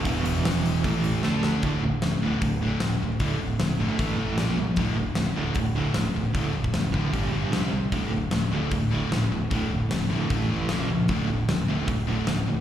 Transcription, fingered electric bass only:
\new Staff \with { instrumentName = "Fingered electric bass" } { \clef bass \time 4/4 \key d \minor \tempo 4 = 152 e,,2 a,,4 d,4 | d,,8 d,,8 d,,8 d,,8 d,,4 d,,8 d,,8 | d,,8 d,,8 d,,8 g,,8 a,,8 a,,8 bes,,8 c,8 | d,,8 d,,8 d,,8 d,,8 d,,4 d,,8 d,,8 |
d,,8 d,,8 d,,8 a,,8 g,,8 g,,8 c,8 c,8 | d,,8 d,,8 d,,8 d,,8 d,,4 d,,8 d,,8 | d,,8 d,,8 d,,8 a,,8 a,,8 a,,8 bes,,8 cis,8 | d,,8 d,,8 d,,8 d,,8 d,,4 d,,8 d,,8 | }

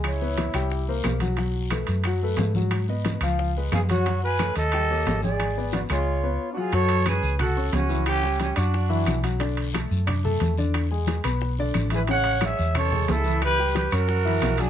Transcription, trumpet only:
\new Staff \with { instrumentName = "Trumpet" } { \time 4/4 \key fis \minor \tempo 4 = 179 e'2. r4 | r1 | r2. gis'8 fis'8~ | fis'8 b'4 a'2 gis'8~ |
gis'4 fis'8 eis'4.~ eis'16. fis'32 gis'8 | cis''4 b'4 a'4 fis'4 | g'4 g'8 fis'2 r8 | r1 |
r2. r8 b'8 | fis''4 e''4 cis''4 a'4 | b'4 b'8 ais'2 gis'8 | }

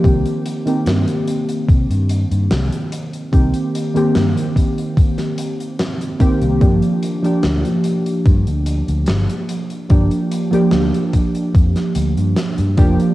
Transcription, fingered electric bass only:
\new Staff \with { instrumentName = "Fingered electric bass" } { \clef bass \time 4/4 \key c \minor \tempo 4 = 73 c,16 r8. g,16 r8. c16 g,8 g,16 c,16 r8. | c,16 r8. g,16 r2 r8 c,16 | g,,16 r8. d,16 r8. g,16 d,8 d,16 g,,16 r8. | g,,16 r8. d,16 r8. f,16 r16 d,16 g,16 r16 g,16 f,,16 r16 | }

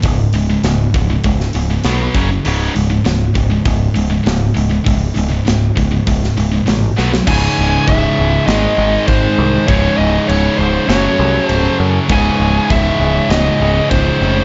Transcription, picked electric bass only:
\new Staff \with { instrumentName = "Picked electric bass" } { \clef bass \time 4/4 \key cis \minor \tempo 4 = 100 cis,,8 cis,,8 cis,,8 cis,,8 cis,,8 cis,,8 b,,8 fis,,8 | cis,,8 cis,,8 cis,,8 cis,,8 cis,,8 cis,,8 cis,,8 cis,,8 | cis,,8 cis,,8 cis,,8 cis,,8 cis,,8 cis,,8 a,,8 b,,8 | cis,,8 cis,,8 cis,,8 cis,,8 gis,,8 gis,,8 gis,,8 bis,,8 |
cis,,8 cis,,8 cis,,8 cis,,8 fis,,8 bis,,8 cis,,8 fis,8 | cis,,8 cis,,8 cis,,8 cis,,8 cis,,8 cis,,8 cis,,8 eis,,8 | }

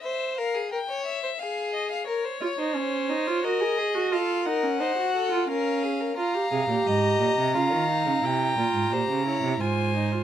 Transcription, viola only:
\new Staff \with { instrumentName = "Viola" } { \time 3/4 \key bes \minor \tempo 4 = 88 r2. | r8 f'16 ees'16 des'8 ees'16 f'16 ges'16 aes'8 ges'16 | f'8 ees'16 des'16 ees'16 ges'8 f'16 des'4 | f'16 g'16 aes'16 g'4~ g'16 f'8 ees'8 |
e'8 f'8 g'8 e'8 f'8 ees'16 f'16 | }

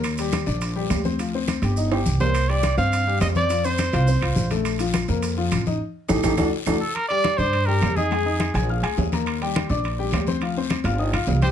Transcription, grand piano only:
\new Staff \with { instrumentName = "Grand piano" } { \time 4/4 \key g \minor \tempo 4 = 208 <bes bes'>8 <g g'>4 <d' d''>4 <g g'>4 <c' c''>8 | <f f'>8 <c' c''>4 <g' g''>8 <ees' ees''>8 <g' g''>4 <bes bes'>8~ | <bes bes'>8 <g g'>4 <c' c''>4 <g g'>4 <c' c''>8 | <f f'>8 <c' c''>4 <f' f''>8 <c' c''>8 <f' f''>4 <a a'>8~ |
<a a'>8 <f f'>4 <bes bes'>4 <f f'>4 <ees' ees''>8 | r4 <ees' g' a'>8 <ees' g' a'>8 <d' fis' a'>8 r8 <d' fis' a'>8 r8 | r8 <g g' g''>4 <d' d'' d'''>4 <g g' g''>4 <ees' ees'' ees'''>8 | <aes aes' aes''>8 <ees' ees'' ees'''>4 <aes' aes'' aes'''>8 <f' f'' f'''>8 <aes' aes'' aes'''>4 <bes bes' bes''>8~ |
<bes bes' bes''>8 <g g' g''>4 <d' d'' d'''>4 <g g' g''>4 <c' c'' c'''>8 | <f f' f''>8 <c' c'' c'''>4 <f' f'' f'''>8 <ees' ees'' ees'''>8 <f' f'' f'''>4 <g g' g''>8 | }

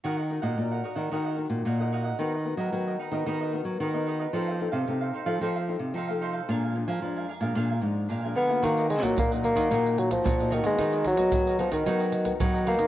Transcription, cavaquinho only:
\new Staff \with { instrumentName = "Cavaquinho" } { \time 4/4 \key ees \minor \tempo 4 = 112 <ges' bes' ees'' ges''>16 <bes' ees'' ges''>16 r16 <bes' ees'' ges''>8 <bes' ees'' ges''>16 <ges' bes' ees'' ges''>16 <bes' ees'' ges''>16 <ges' bes' ees'' ges''>16 <bes' ees'' ges''>16 r8 <ges' bes' ees'' ges''>16 <bes' ees'' ges''>16 <ges' bes' ees'' ges''>16 <bes' ees'' ges''>16 | <dis' ais' b' dis''>16 <ais' b' dis''>16 r16 <ais' b' dis''>8 <ais' b' dis''>16 <dis' ais' b' dis''>16 <ais' b' dis''>16 <dis' ais' b' dis''>16 <ais' b' dis''>16 r8 <dis' ais' b' dis''>16 <ais' b' dis''>16 <dis' ais' b' dis''>16 <ais' b' dis''>16 | <ees' a' c'' f''>16 <a' c'' f''>16 r16 <a' c'' f''>8 <a' c'' f''>16 <ees' a' c'' f''>16 <a' c'' f''>16 <ees' a' c'' f''>16 <a' c'' f''>16 r8 <ees' a' c'' f''>16 <a' c'' f''>16 <ees' a' c'' f''>16 <a' c'' f''>16 | <d' bes' f'' aes''>16 <bes' f'' aes''>16 r16 <bes' f'' aes''>8 <bes' f'' aes''>16 <d' bes' f'' aes''>16 <bes' f'' aes''>16 <d' bes' f'' aes''>16 <bes' f'' aes''>16 r8 <d' bes' f'' aes''>16 <bes' f'' aes''>16 <d' bes' f'' aes''>16 <bes' f'' aes''>16 |
<ges' bes' ees'' ges''>16 <bes' ees'' ges''>16 r16 <bes' ees'' ges''>8 <bes' ees'' ges''>16 <ges' bes' ees'' ges''>16 <bes' ees'' ges''>16 <ges' bes' ees'' ges''>16 <bes' ees'' ges''>16 r8 <ges' bes' ees'' ges''>16 <bes' ees'' ges''>16 <ges' bes' ees'' ges''>16 <ees'' ges''>16 | <dis' ais' b' dis''>16 <ais' b' dis''>16 r16 <ais' b' dis''>8 <ais' b' dis''>16 <dis' ais' b' dis''>16 <ais' b' dis''>16 <dis' ais' b' dis''>16 <ais' b' dis''>16 r8 <dis' ais' b' dis''>16 <ais' b' dis''>16 <dis' ais' b' dis''>16 <ais' b' dis''>16 | }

